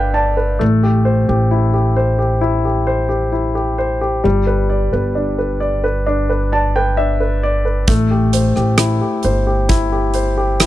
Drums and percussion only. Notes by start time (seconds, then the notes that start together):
7.88 kick, closed hi-hat
8.33 closed hi-hat
8.56 cross-stick
8.78 cross-stick, closed hi-hat
9.23 closed hi-hat
9.69 kick, closed hi-hat
10.14 closed hi-hat
10.60 cross-stick, closed hi-hat